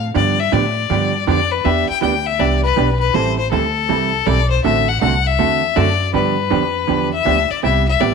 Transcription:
Already playing: upright bass A2
0.14 upright bass G2, hollow-body jazz guitar D3 F3 B3 D4 G4, fiddle D5
0.40 fiddle E5
0.52 upright bass A2, hollow-body jazz guitar D3 F3 B3 D4 G4, fiddle D5
0.90 upright bass G2, hollow-body jazz guitar D3 F3 B3 D4 G4
1.27 upright bass F2, hollow-body jazz guitar D3 F3 B3 D4 G4, fiddle D5
1.52 fiddle B4
1.65 upright bass E2, hollow-body jazz guitar E3 B3 D4 G4, fiddle E5
1.89 fiddle G5, muted upright bass stroke
2.01 upright bass D2, hollow-body jazz guitar E3 B3 D4 G4, fiddle G5
2.26 fiddle E5
2.39 upright bass C2, hollow-body jazz guitar E3 B3 D4 G4, fiddle D5
2.63 fiddle B4
2.76 upright bass B1, hollow-body jazz guitar E3 B3 D4 G4
3.00 fiddle B4
3.14 upright bass A1, hollow-body jazz guitar E3 G3 C4 E4 A4, fiddle C5
3.39 fiddle C5
3.52 upright bass D2, hollow-body jazz guitar E3 G3 C4 E4 A4, fiddle A4
3.89 upright bass C2, hollow-body jazz guitar E3 G3 C4 E4 A4
4.26 upright bass B1, hollow-body jazz guitar E3 G3 C4 E4 A4, fiddle D5
4.50 fiddle C5
4.64 upright bass A1, hollow-body jazz guitar D3 A3 C4 F#4 A4, fiddle E5
4.89 fiddle F#5
5.01 upright bass C2, hollow-body jazz guitar D3 A3 C4 F#4 A4, fiddle F#5
5.27 fiddle E5
5.39 upright bass E2, hollow-body jazz guitar D3 A3 C4 F#4 A4
5.76 upright bass F#2, hollow-body jazz guitar D3 A3 C4 F#4 A4, fiddle D5
6.14 upright bass G2, hollow-body jazz guitar D3 F3 B3 D4 G4, fiddle B4
6.50 upright bass F2, hollow-body jazz guitar D3 F3 B3 D4 G4
6.87 upright bass E2, hollow-body jazz guitar D3 F3 B3 D4 G4
7.14 fiddle E5
7.25 upright bass D2, hollow-body jazz guitar D3 F3 B3 D4 G4
7.50 fiddle D5, muted upright bass stroke
7.63 upright bass C2, hollow-body jazz guitar C3 G3 B3 E4 G4, fiddle E5
7.88 fiddle E5
8.00 upright bass A1, hollow-body jazz guitar C3 G3 B3 E4 G4, fiddle D5

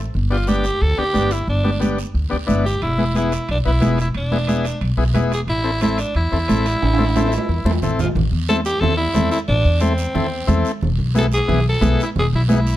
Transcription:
0.14 upright bass G1, long guiro
0.30 transistor combo organ B3 D4 G4, alto saxophone F4
0.47 transistor combo organ B3 D4 G4, alto saxophone G4, high conga, short guiro
0.64 short guiro
0.81 upright bass D2, alto saxophone A4, long guiro
0.97 upright bass D2, transistor combo organ B3 D4 G4, alto saxophone G4
1.13 upright bass G1, transistor combo organ B3 D4 G4, high conga, short guiro
1.31 alto saxophone E4, short guiro
1.47 upright bass G1, alto saxophone D4, long guiro
1.64 transistor combo organ B3 D4 G4, high conga
1.80 transistor combo organ B3 D4 G4, high conga, short guiro
1.98 short guiro
2.14 upright bass D2, long guiro
2.30 upright bass D2, transistor combo organ B3 D4 G4
2.47 upright bass G1, transistor combo organ B3 D4 E4, high conga, short guiro
2.65 alto saxophone G4, short guiro
2.82 upright bass E1, alto saxophone E4, high timbale, long guiro
2.98 transistor combo organ B3 E4 G#4, high conga
3.15 transistor combo organ B3 E4 G#4, alto saxophone E4, high conga, high timbale, short guiro
3.32 high timbale, short guiro
3.49 upright bass B1, alto saxophone D4, high timbale, long guiro
3.65 upright bass B1, transistor combo organ B3 E4 B4, alto saxophone E4
3.80 upright bass E1, transistor combo organ B3 E4 G#4, high conga, high timbale, low timbale, short guiro
3.98 alto saxophone E4, high timbale, short guiro
4.14 upright bass E1, alto saxophone D4, high timbale, long guiro
4.32 transistor combo organ B3 E4 G#4, high conga
4.47 transistor combo organ B3 E4 G#4, high conga, high timbale, short guiro
4.65 high timbale, short guiro
4.81 upright bass B1, high timbale, long guiro
4.97 upright bass B1, transistor combo organ B3 E4 G#4
5.13 upright bass E1, transistor combo organ B3 E4 G#4, high conga, high timbale, low timbale, short guiro
5.32 alto saxophone G#4, high timbale, short guiro
5.47 upright bass A1, alto saxophone E4, high timbale, long guiro
5.64 transistor combo organ C4 E4 A4
5.81 transistor combo organ C4 E4 A4, alto saxophone E4, high conga, high timbale, short guiro
5.98 alto saxophone D4, high timbale, short guiro
6.15 upright bass E2, alto saxophone E4, high timbale, long guiro
6.32 upright bass E2, transistor combo organ C4 E4 A4
6.48 upright bass A1, transistor combo organ C4 E4 A4, high conga, high timbale, short guiro
6.66 high timbale, short guiro
6.82 upright bass A1, high timbale, long guiro
6.94 high timbale
6.98 transistor combo organ C4 E4 A4, high conga
7.05 high timbale
7.16 transistor combo organ C4 E4 A4, high conga, high timbale, short guiro
7.27 low timbale
7.32 short guiro
7.38 low timbale
7.49 upright bass E2, low timbale, long guiro
7.65 upright bass E2, transistor combo organ C4 E4 A4, high conga
7.71 low timbale
7.82 upright bass A1, transistor combo organ C4 E4 A4, low conga, short guiro
7.99 alto saxophone F4, low conga, short guiro
8.04 low timbale
8.15 upright bass A1, high conga, low conga, long guiro
8.32 upright bass E2
8.48 transistor combo organ C4 E4 A4, alto saxophone A4, high conga, short guiro
8.65 alto saxophone G4, short guiro
8.81 upright bass E2, transistor combo organ C4 E4 A4, alto saxophone A4, high conga, low conga, long guiro
8.97 alto saxophone E4
9.14 upright bass E2, transistor combo organ C4 E4 A4, high conga, low conga, short guiro
9.31 alto saxophone E4, short guiro
9.48 upright bass A1, alto saxophone D4, high conga, long guiro
9.65 upright bass E2
9.80 alto saxophone C4, transistor combo organ C4 E4 A4, high conga, short guiro
9.98 short guiro
10.15 upright bass E2, transistor combo organ C4 E4 A4, high conga, low conga, long guiro
10.47 upright bass E2, transistor combo organ C4 E4 A4, high conga, low conga, short guiro
10.65 short guiro
10.81 upright bass E1, high conga, low conga, long guiro
10.99 upright bass B1
11.15 transistor combo organ B3 E4 G#4, alto saxophone A4, high conga, short guiro
11.32 alto saxophone G#4, short guiro
11.48 upright bass B1, transistor combo organ B3 E4 G#4, high conga, low conga, long guiro
11.69 alto saxophone A4
11.81 upright bass B1, transistor combo organ B3 E4 G#4, high conga, low conga, short guiro
12.00 alto saxophone E4, short guiro
12.16 upright bass E1, alto saxophone G#4, high conga, low conga, long guiro
12.33 upright bass B1, alto saxophone E4
12.48 transistor combo organ B3 E4 G#4, alto saxophone E4, high conga, short guiro
12.67 short guiro

